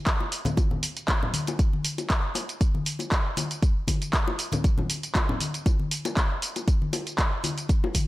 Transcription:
0.07 kick, clap, closed hi-hat, tambourine
0.20 high bongo
0.32 open hi-hat, tambourine
0.45 closed hi-hat, tambourine, high conga, low conga
0.57 kick, closed hi-hat, tambourine, high bongo
0.71 high conga, low conga
0.83 open hi-hat, tambourine
0.97 closed hi-hat, tambourine
1.08 kick, clap, closed hi-hat, tambourine, high bongo
1.23 low conga
1.34 open hi-hat, tambourine, high conga
1.47 closed hi-hat, tambourine, high bongo
1.59 kick, closed hi-hat, tambourine
1.73 high conga
1.85 open hi-hat, tambourine
1.98 closed hi-hat, tambourine, high bongo
2.10 kick, clap, closed hi-hat, tambourine
2.35 open hi-hat, tambourine, high bongo
2.49 closed hi-hat, tambourine
2.61 kick, closed hi-hat, tambourine
2.75 high conga
2.86 open hi-hat, tambourine
2.99 closed hi-hat, tambourine, high bongo
3.12 kick, clap, closed hi-hat, tambourine
3.37 open hi-hat, tambourine, high bongo, high conga
3.51 closed hi-hat, tambourine
3.63 kick, closed hi-hat, tambourine
3.88 kick, open hi-hat, tambourine, high bongo, high conga
4.02 closed hi-hat, tambourine
4.13 kick, clap, closed hi-hat, tambourine
4.28 high bongo
4.39 open hi-hat, tambourine
4.52 closed hi-hat, tambourine, high conga, low conga
4.64 kick, closed hi-hat, tambourine
4.78 high bongo, high conga, low conga
4.90 open hi-hat, tambourine
5.03 closed hi-hat, tambourine
5.15 kick, clap, closed hi-hat, tambourine, high bongo
5.29 low conga
5.40 open hi-hat, tambourine, high conga
5.54 closed hi-hat, tambourine
5.66 kick, closed hi-hat, tambourine, high bongo
5.79 high conga
5.91 open hi-hat, tambourine
6.05 closed hi-hat, tambourine, high bongo
6.17 kick, clap, closed hi-hat, tambourine
6.42 open hi-hat, tambourine
6.56 closed hi-hat, tambourine, high bongo
6.68 kick, closed hi-hat, tambourine
6.82 high conga
6.93 open hi-hat, tambourine, high bongo
7.07 closed hi-hat, tambourine
7.18 kick, clap, closed hi-hat, tambourine
7.44 open hi-hat, tambourine, high bongo, high conga
7.58 closed hi-hat, tambourine
7.69 kick, closed hi-hat, tambourine
7.84 high bongo
7.95 kick, open hi-hat, tambourine, high conga

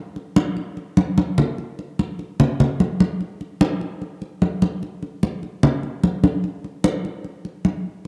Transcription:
0.16 high conga
0.36 high conga
0.57 high conga
0.77 high conga
0.97 high conga
1.18 high conga
1.38 low conga
1.58 high conga
1.79 high conga
1.99 high conga
2.19 high conga
2.40 high conga, low conga
2.60 high conga, low conga
2.80 high conga
3.00 high conga
3.21 high conga
3.41 high conga
3.61 high conga
3.81 high conga
4.02 high conga
4.22 high conga
4.42 high conga
4.62 high conga
4.83 high conga
5.03 high conga
5.23 high conga
5.43 high conga
5.63 high conga, low conga
5.83 high conga
6.03 high conga
6.24 high conga
6.44 high conga
6.64 high conga
6.84 high conga
7.05 high conga
7.24 high conga
7.45 high conga
7.65 high conga

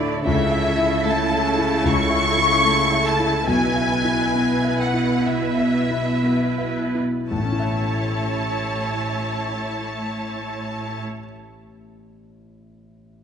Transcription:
Already playing: A2 D3 A3 D4 E4 A4 D5 E5
0.00 E4
0.25 C#2 C#3 E4 A4 E5
0.52 E5
0.66 C#4
0.79 E4
1.05 A3 A4 A5
1.31 E5
1.45 C#4
1.58 E4
1.84 C#2 C#3 C#6
2.10 E5
2.24 E4
2.38 E4
2.64 A3 A4
2.92 E5
3.05 C#4 A5
3.20 E4
3.47 B1 B2 B4 G#5
3.76 E5
3.90 B3
4.04 E4
4.34 B3 B4
4.65 E5
4.79 B3 F#5
4.94 E4
5.26 B2 E5
5.58 E5
5.74 E4
5.91 E4
6.23 B3 B4
6.58 E5
6.77 B3
6.95 E4
7.30 A1 A2 E4 C#5 A5
7.38 A2 A3
7.45 C#4
7.52 E4
7.59 E5

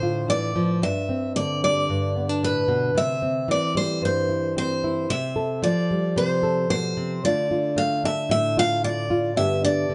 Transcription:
Already playing: A2 D3 A3 D4 C5
0.03 F4
0.28 E3 D5
0.56 F3
0.82 G2 E5
1.09 C4
1.36 D3 D5
1.63 G3 D5
1.89 G2
2.16 B3
2.29 D4
2.43 A2 B4
2.68 B2
2.95 C3 E5
3.22 C4
3.48 E3 D5
3.75 G3 C5
4.01 G2 C5
4.29 E4
4.57 C4 C5
4.84 E4
5.10 C3 E5
5.36 A4
5.62 F3 D5
5.91 G3
6.16 C3 C5
6.43 A4
6.70 B2 C5
6.97 C3
7.24 D3 A3 D4 F4 D5
7.51 F4
7.76 A3 F5
8.04 D4 E5
8.29 A2 E5
8.57 F4 F5
8.84 F4 D5
9.10 F4
9.36 G2 D3 B3 D4 G4 E5
9.64 D4 D5
9.89 D3

